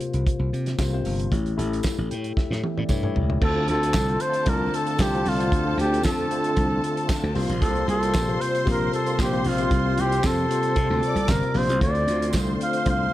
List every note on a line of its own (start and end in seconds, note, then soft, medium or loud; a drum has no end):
0.00 0.78 C3 medium
0.00 0.78 A#3 medium
0.00 0.79 F4 medium
0.00 0.80 C5 medium
0.00 closed hi-hat medium
0.14 0.24 C2 medium
0.14 closed hi-hat soft
0.27 kick loud
0.27 closed hi-hat medium
0.39 0.49 C2 medium
0.53 0.74 C3 medium
0.53 closed hi-hat soft
0.66 snare soft
0.66 closed hi-hat soft
0.78 1.00 C2 medium
0.78 0.89 C3 medium
0.78 0.89 A#3 medium
0.78 0.90 F4 medium
0.78 0.90 C5 medium
0.78 kick loud
0.78 snare loud
0.78 clap medium
0.78 tambourine medium
0.93 1.23 C3 medium
0.93 1.23 A#3 medium
0.93 1.24 F4 medium
0.93 1.24 C5 medium
1.05 1.27 G1 medium
1.05 open hi-hat medium
1.20 closed hi-hat medium
1.32 1.53 A1 medium
1.32 1.52 A3 medium
1.32 1.52 E4 medium
1.32 1.53 G4 medium
1.32 1.53 C#5 medium
1.32 kick loud
1.32 closed hi-hat medium
1.46 closed hi-hat soft
1.57 1.79 A1 loud
1.57 2.39 A3 medium
1.57 2.39 E4 medium
1.57 2.39 G4 medium
1.57 2.40 A4 loud
1.57 closed hi-hat medium
1.73 closed hi-hat soft
1.83 kick medium
1.83 snare loud
1.83 clap medium
1.83 tambourine loud
1.98 2.08 A1 medium
2.11 2.33 A2 loud
2.11 2.35 G5 medium
2.11 closed hi-hat medium
2.24 closed hi-hat soft
2.37 2.74 E5 medium
2.37 muted slap bass stroke soft
2.37 kick loud
2.37 snare soft
2.51 2.61 A2 medium
2.51 snare medium
2.64 high tom medium
2.77 2.88 A2 medium
2.77 2.89 D5 medium
2.77 high tom medium
2.89 3.18 G2 medium
2.89 3.00 A3 medium
2.89 3.00 E4 medium
2.89 3.00 G4 medium
2.89 3.01 C#5 medium
2.89 kick medium
2.89 mid tom medium
2.89 tambourine medium
3.03 3.33 A3 medium
3.03 3.34 E4 medium
3.03 3.34 G4 medium
3.03 3.34 C#5 medium
3.03 mid tom medium
3.16 3.37 C#2 loud
3.16 floor tom medium
3.30 floor tom medium
3.41 3.63 D2 loud
3.41 3.92 D3 medium
3.41 7.32 D3 medium
3.41 7.31 A3 medium
3.41 7.32 C4 medium
3.41 3.93 D4 medium
3.41 11.77 F4 medium
3.41 3.93 F4 medium
3.41 7.32 A4 medium
3.41 3.68 A4 loud
3.41 3.93 C5 medium
3.41 7.32 A5 loud
3.41 kick loud
3.41 crash loud
3.68 3.96 D2 loud
3.68 4.23 A4 loud
3.68 closed hi-hat medium
3.83 closed hi-hat medium
3.93 4.16 C2 medium
3.93 kick loud
3.93 snare loud
3.93 clap loud
3.93 tambourine loud
4.08 4.38 D3 medium
4.08 4.39 D4 medium
4.08 4.39 F4 medium
4.08 4.39 C5 medium
4.08 closed hi-hat soft
4.20 4.51 C5 loud
4.20 closed hi-hat medium
4.33 closed hi-hat soft
4.46 4.68 C2 loud
4.46 4.98 D3 medium
4.46 4.98 D4 medium
4.46 4.98 F4 medium
4.46 4.77 A#4 loud
4.46 4.99 D5 loud
4.46 kick loud
4.46 closed hi-hat medium
4.74 5.03 A4 medium
4.74 closed hi-hat medium
4.87 closed hi-hat soft
4.99 5.21 C2 loud
4.99 5.30 G4 loud
4.99 kick loud
4.99 snare loud
4.99 clap loud
4.99 tambourine medium
5.13 5.33 D3 medium
5.13 5.34 D4 medium
5.13 5.34 F4 medium
5.13 5.34 C5 medium
5.13 closed hi-hat soft
5.26 5.52 C2 loud
5.26 5.80 F4 loud
5.26 open hi-hat medium
5.39 5.59 D3 medium
5.39 5.60 D4 medium
5.39 5.60 F4 medium
5.39 5.60 C5 medium
5.39 closed hi-hat medium
5.52 5.73 D2 loud
5.52 kick loud
5.52 closed hi-hat medium
5.65 6.16 D3 medium
5.65 6.16 D4 medium
5.65 6.17 F4 medium
5.65 6.17 C5 medium
5.77 5.99 D2 loud
5.77 6.04 G4 loud
5.77 closed hi-hat medium
5.94 closed hi-hat medium
6.03 6.26 F2 medium
6.03 7.32 A4 loud
6.03 kick loud
6.03 snare loud
6.03 clap loud
6.03 tambourine loud
6.19 closed hi-hat soft
6.31 7.12 D3 medium
6.31 7.12 D4 medium
6.31 7.12 F4 medium
6.31 7.13 C5 medium
6.31 closed hi-hat medium
6.44 closed hi-hat soft
6.57 6.78 C2 medium
6.57 kick loud
6.57 closed hi-hat medium
6.84 closed hi-hat medium
6.97 closed hi-hat soft
7.09 kick loud
7.09 snare loud
7.09 clap loud
7.09 tambourine medium
7.23 7.33 D2 medium
7.34 7.47 C2 loud
7.34 8.09 C3 medium
7.34 11.77 C3 medium
7.34 11.77 G3 medium
7.34 8.09 A#3 medium
7.34 9.43 A#3 medium
7.34 8.09 F4 medium
7.34 10.98 C5 medium
7.34 8.09 C5 loud
7.34 10.98 C6 loud
7.34 open hi-hat medium
7.49 7.61 A#1 medium
7.49 closed hi-hat medium
7.61 7.83 C2 loud
7.61 7.87 A4 loud
7.61 kick loud
7.61 closed hi-hat medium
7.75 closed hi-hat soft
7.88 8.14 C2 loud
7.88 8.43 A4 loud
7.88 closed hi-hat medium
8.03 closed hi-hat medium
8.14 8.35 A#1 medium
8.14 kick loud
8.14 snare loud
8.14 clap medium
8.14 tambourine loud
8.27 8.58 C3 medium
8.27 8.58 A#3 medium
8.27 8.58 F4 medium
8.27 8.59 C5 medium
8.27 closed hi-hat soft
8.41 8.67 C5 loud
8.41 closed hi-hat medium
8.55 closed hi-hat soft
8.66 8.88 A#1 medium
8.66 9.17 C3 medium
8.66 9.17 A#3 medium
8.66 9.17 F4 medium
8.66 9.17 A#4 medium
8.66 kick loud
8.66 closed hi-hat medium
8.70 8.93 A#4 loud
8.93 9.18 A4 medium
8.93 closed hi-hat medium
9.06 closed hi-hat soft
9.19 9.40 A#1 medium
9.19 9.49 G4 medium
9.19 kick loud
9.19 snare loud
9.19 clap loud
9.19 tambourine loud
9.32 9.52 C3 medium
9.32 9.53 A#3 medium
9.32 9.53 F4 medium
9.32 9.53 C5 loud
9.32 closed hi-hat soft
9.44 9.66 A#1 medium
9.44 13.13 C4 medium
9.44 10.02 F4 loud
9.44 open hi-hat medium
9.58 9.79 C3 medium
9.58 9.79 A#3 medium
9.58 9.79 F4 medium
9.58 9.80 G4 medium
9.58 closed hi-hat medium
9.71 9.92 C2 loud
9.71 kick loud
9.71 closed hi-hat medium
9.85 10.35 C3 medium
9.85 10.36 A#3 medium
9.85 10.36 F4 medium
9.85 10.36 C5 medium
9.98 10.19 C2 loud
9.98 10.28 G4 loud
9.98 closed hi-hat medium
10.12 closed hi-hat medium
10.23 10.45 F2 medium
10.23 11.32 A4 loud
10.23 kick loud
10.23 snare loud
10.23 clap loud
10.23 tambourine loud
10.38 closed hi-hat soft
10.50 11.31 C3 medium
10.50 11.31 A#3 medium
10.50 11.31 F4 medium
10.50 11.32 C5 medium
10.50 closed hi-hat medium
10.63 closed hi-hat soft
10.76 10.87 C3 loud
10.76 kick loud
10.76 closed hi-hat medium
10.90 11.00 D2 medium
11.02 11.54 D5 medium
11.02 11.54 D6 medium
11.02 closed hi-hat medium
11.15 11.26 C2 medium
11.15 closed hi-hat medium
11.29 11.40 G1 loud
11.29 11.59 A#4 loud
11.29 kick loud
11.29 snare loud
11.29 clap loud
11.29 tambourine loud
11.43 closed hi-hat soft
11.54 11.70 A#1 loud
11.54 11.75 C3 medium
11.54 11.75 A#3 medium
11.54 11.76 F4 medium
11.54 11.76 C5 medium
11.54 11.82 C5 loud
11.54 open hi-hat medium
11.69 11.79 C2 medium
11.69 closed hi-hat medium
11.80 12.02 D2 loud
11.80 12.31 D3 medium
11.80 13.13 D3 medium
11.80 12.31 A3 medium
11.80 13.13 A3 medium
11.80 12.32 F4 medium
11.80 13.13 F4 medium
11.80 13.13 C5 medium
11.80 12.32 C5 medium
11.80 12.30 D5 loud
11.80 13.13 C6 medium
11.80 kick loud
11.80 closed hi-hat medium
11.95 closed hi-hat soft
12.08 12.36 D2 loud
12.08 closed hi-hat medium
12.22 closed hi-hat medium
12.33 12.55 C2 medium
12.33 kick loud
12.33 snare loud
12.33 clap medium
12.33 tambourine loud
12.47 12.77 D3 medium
12.47 12.77 A3 medium
12.47 12.78 F4 medium
12.47 12.78 D5 medium
12.61 12.86 F5 loud
12.61 closed hi-hat medium
12.73 closed hi-hat soft
12.86 13.07 C2 loud
12.86 13.13 D3 medium
12.86 13.13 A3 medium
12.86 13.13 F4 medium
12.86 13.13 C5 medium
12.86 13.13 F5 loud
12.86 kick loud
12.86 closed hi-hat medium